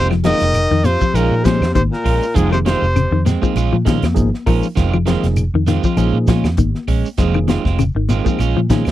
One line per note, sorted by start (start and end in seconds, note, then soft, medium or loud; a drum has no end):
0.00 0.32 F1 medium
0.00 0.13 D#3 medium
0.00 0.13 G#3 medium
0.00 0.13 C4 medium
0.00 0.13 F4 medium
0.09 0.31 F3 medium
0.09 0.15 D#4 medium
0.09 0.15 G#4 medium
0.09 snare soft
0.09 claves medium
0.24 0.43 D#3 medium
0.24 0.88 D#3 medium
0.24 0.60 F3 medium
0.24 0.43 G#3 medium
0.24 0.59 A#3 medium
0.24 0.44 C4 medium
0.24 0.60 D#4 medium
0.24 0.44 F4 medium
0.24 0.60 G#4 medium
0.24 0.87 D#5 loud
0.24 snare medium
0.24 closed hi-hat medium
0.24 high conga loud
0.24 low conga loud
0.24 shekere soft
0.40 0.65 F1 medium
0.40 snare soft
0.40 closed hi-hat medium
0.40 shekere soft
0.54 closed hi-hat medium
0.54 claves medium
0.54 shekere medium
0.71 0.95 F2 medium
0.71 0.80 D#3 medium
0.84 1.17 C3 medium
0.84 1.04 F4 medium
0.84 1.17 C5 loud
0.84 muted clean electric guitar stroke medium
0.84 closed hi-hat medium
0.84 high conga loud
0.84 shekere medium
1.01 1.21 F3 medium
1.01 kick medium
1.01 shekere medium
1.14 1.27 A#1 loud
1.14 1.46 A#2 medium
1.14 1.63 F3 medium
1.14 1.34 G#3 medium
1.14 1.63 A#3 medium
1.14 1.34 C#4 medium
1.14 1.63 D#4 medium
1.14 1.34 F4 medium
1.14 1.62 G#4 medium
1.14 1.47 A#4 medium
1.14 closed hi-hat medium
1.14 claves medium
1.14 shekere medium
1.31 1.62 A#2 medium
1.44 1.74 C3 medium
1.44 1.65 F3 medium
1.44 1.64 G#3 medium
1.44 1.65 C#4 medium
1.44 1.74 C5 medium
1.44 kick medium
1.44 snare medium
1.44 closed hi-hat medium
1.44 high conga medium
1.44 shekere medium
1.61 1.72 F2 medium
1.61 snare medium
1.61 claves medium
1.61 shekere soft
1.74 1.89 G#1 medium
1.74 1.82 C3 medium
1.74 1.95 D#3 medium
1.74 1.82 C5 medium
1.74 kick medium
1.74 closed hi-hat medium
1.74 high conga medium
1.74 shekere medium
1.92 2.38 A#2 medium
1.92 2.37 A#4 medium
1.92 snare soft
2.04 2.19 A#1 medium
2.04 2.24 G#3 medium
2.04 2.25 C#4 medium
2.04 2.25 F4 medium
2.04 kick medium
2.04 open hi-hat medium
2.04 claves medium
2.04 shekere soft
2.23 shekere medium
2.34 2.74 F1 medium
2.34 2.53 G#2 medium
2.34 2.54 D#3 medium
2.34 2.77 F3 medium
2.34 2.54 G#3 medium
2.34 2.77 A#3 medium
2.34 2.54 C4 medium
2.34 2.77 D#4 medium
2.34 2.55 F4 medium
2.34 2.77 G#4 medium
2.34 2.52 G#4 medium
2.34 kick medium
2.34 closed hi-hat medium
2.34 low conga medium
2.34 shekere medium
2.52 2.59 C3 medium
2.52 2.71 D#3 medium
2.52 2.59 C5 medium
2.52 claves medium
2.65 3.22 C3 medium
2.65 2.85 D#3 medium
2.65 2.85 G#3 medium
2.65 2.85 C4 medium
2.65 2.85 F4 medium
2.65 3.22 C5 loud
2.65 snare medium
2.65 closed hi-hat medium
2.65 high conga loud
2.65 low conga medium
2.65 shekere soft
2.82 3.06 F1 medium
2.82 shekere soft
2.96 3.07 C#3 medium
2.96 closed hi-hat medium
2.96 claves medium
2.96 shekere loud
3.11 3.36 F2 medium
3.11 3.32 D#3 medium
3.25 3.42 G#3 medium
3.25 3.41 C4 medium
3.25 muted clean electric guitar stroke medium
3.25 snare soft
3.25 closed hi-hat soft
3.25 high conga loud
3.25 shekere loud
3.42 3.56 F3 medium
3.42 3.63 F3 medium
3.42 3.55 G#3 soft
3.42 3.56 A#3 medium
3.42 3.56 C4 medium
3.42 3.56 D#4 medium
3.42 3.56 F4 medium
3.42 3.56 G#4 medium
3.42 kick medium
3.42 shekere medium
3.55 3.69 A#1 loud
3.55 3.75 G#3 medium
3.55 3.75 C#4 medium
3.55 3.76 F4 loud
3.55 closed hi-hat medium
3.55 claves medium
3.55 shekere medium
3.73 4.04 A#2 medium
3.73 3.82 F3 medium
3.85 4.07 D#3 medium
3.85 3.99 F3 medium
3.85 4.05 G#3 medium
3.85 3.99 A#3 medium
3.85 4.05 C#4 medium
3.85 3.99 D#4 medium
3.85 4.06 F4 medium
3.85 3.99 G#4 loud
3.85 kick medium
3.85 snare medium
3.85 closed hi-hat medium
3.85 high conga medium
3.85 shekere medium
4.02 4.14 F2 medium
4.02 snare medium
4.02 closed hi-hat soft
4.02 high conga medium
4.02 claves medium
4.02 shekere soft
4.15 4.30 G#1 medium
4.15 4.29 F3 loud
4.15 4.29 A#3 medium
4.15 4.29 D#4 medium
4.15 4.28 G#4 loud
4.15 kick medium
4.15 closed hi-hat medium
4.15 high conga medium
4.15 shekere medium
4.34 snare soft
4.46 4.60 A#1 loud
4.46 4.66 F3 loud
4.46 4.67 F3 medium
4.46 4.66 G#3 medium
4.46 4.66 A#3 medium
4.46 4.66 C#4 medium
4.46 4.65 D#4 loud
4.46 4.67 F4 medium
4.46 4.65 A#4 loud
4.46 kick medium
4.46 open hi-hat medium
4.46 claves medium
4.46 shekere soft
4.63 shekere medium
4.76 5.15 F1 loud
4.76 4.96 D#3 medium
4.76 4.96 G#3 medium
4.76 4.96 C4 loud
4.76 4.96 F4 loud
4.76 kick medium
4.76 snare soft
4.76 closed hi-hat medium
4.76 low conga medium
4.76 shekere medium
4.92 5.13 F3 medium
4.92 4.98 D#4 medium
4.92 4.99 G#4 medium
4.92 claves medium
5.06 5.26 D#3 medium
5.06 5.42 F3 medium
5.06 5.26 G#3 medium
5.06 5.42 A#3 medium
5.06 5.26 C4 medium
5.06 5.42 D#4 medium
5.06 5.26 F4 medium
5.06 5.43 G#4 loud
5.06 snare medium
5.06 closed hi-hat medium
5.06 high conga loud
5.06 low conga medium
5.06 shekere soft
5.23 5.48 F1 medium
5.23 snare soft
5.23 closed hi-hat medium
5.23 shekere soft
5.36 closed hi-hat medium
5.36 claves medium
5.36 shekere loud
5.54 5.78 F2 medium
5.54 5.64 D#3 medium
5.67 5.84 D#3 medium
5.67 5.79 D#3 medium
5.67 5.84 G#3 medium
5.67 5.83 C4 medium
5.67 5.83 F4 medium
5.67 snare soft
5.67 closed hi-hat medium
5.67 high conga loud
5.67 shekere loud
5.84 6.04 F3 medium
5.84 5.96 G#3 soft
5.84 5.97 C4 medium
5.84 5.97 F4 medium
5.84 kick medium
5.84 shekere medium
5.97 6.11 A#1 loud
5.97 6.46 F3 medium
5.97 6.17 G#3 medium
5.97 6.46 A#3 medium
5.97 6.17 C#4 medium
5.97 6.46 D#4 medium
5.97 6.17 F4 medium
5.97 6.46 G#4 loud
5.97 closed hi-hat medium
5.97 claves medium
5.97 shekere medium
6.13 6.45 A#2 medium
6.27 6.49 F3 medium
6.27 6.47 G#3 medium
6.27 6.48 C#4 medium
6.27 6.48 F4 medium
6.27 kick medium
6.27 snare medium
6.27 closed hi-hat medium
6.27 high conga medium
6.27 shekere medium
6.44 6.55 F2 medium
6.44 snare medium
6.44 claves medium
6.44 shekere soft
6.57 6.72 G#1 medium
6.57 6.78 D#3 medium
6.57 kick medium
6.57 closed hi-hat medium
6.57 high conga medium
6.57 shekere medium
6.75 snare soft
6.88 7.02 A#1 medium
6.88 7.07 G#3 medium
6.88 7.07 C#4 medium
6.88 kick medium
6.88 open hi-hat medium
6.88 claves medium
6.88 shekere soft
7.06 shekere medium
7.17 7.56 F1 medium
7.17 7.38 D#3 medium
7.17 7.60 F3 medium
7.17 7.38 G#3 medium
7.17 7.61 A#3 medium
7.17 7.38 C4 medium
7.17 7.61 D#4 medium
7.17 7.38 F4 loud
7.17 7.61 G#4 loud
7.17 kick medium
7.17 snare soft
7.17 closed hi-hat medium
7.17 low conga medium
7.17 shekere medium
7.34 7.55 D#3 medium
7.34 claves medium
7.48 7.65 D#3 medium
7.48 7.65 G#3 medium
7.48 7.65 C4 medium
7.48 7.64 F4 medium
7.48 snare medium
7.48 closed hi-hat medium
7.48 high conga loud
7.48 low conga loud
7.48 shekere soft
7.65 7.90 F1 medium
7.65 7.83 G#3 soft
7.65 7.83 C4 soft
7.65 7.82 F4 medium
7.65 kick medium
7.65 snare soft
7.65 shekere soft
7.79 7.90 C#3 medium
7.79 closed hi-hat medium
7.79 claves medium
7.79 shekere loud
7.95 8.20 G#1 medium
7.95 8.16 D#3 medium
8.09 8.26 D#3 medium
8.09 8.26 G#3 medium
8.09 8.25 C4 medium
8.09 8.25 F4 medium
8.09 closed hi-hat medium
8.09 high conga medium
8.09 shekere loud
8.24 8.39 F3 medium
8.24 8.46 F3 medium
8.24 8.38 G#3 soft
8.24 8.39 A#3 medium
8.24 8.40 C4 medium
8.24 8.39 D#4 medium
8.24 8.39 F4 medium
8.24 8.39 G#4 loud
8.24 kick medium
8.24 shekere medium
8.39 8.53 A#1 loud
8.39 8.59 G#3 medium
8.39 8.59 C#4 medium
8.39 8.59 F4 loud
8.39 closed hi-hat medium
8.39 claves medium
8.39 shekere medium
8.56 8.88 A#2 medium
8.56 8.65 F3 medium
8.70 8.90 D#3 medium
8.70 8.83 F3 medium
8.70 8.89 G#3 medium
8.70 8.83 A#3 medium
8.70 8.90 C#4 medium
8.70 8.83 D#4 medium
8.70 8.90 F4 medium
8.70 8.83 G#4 loud
8.70 kick medium
8.70 snare medium
8.70 closed hi-hat medium
8.70 high conga loud
8.70 shekere medium
8.85 8.92 F2 medium
8.85 snare medium
8.85 closed hi-hat soft
8.85 high conga medium
8.85 claves medium
8.85 shekere soft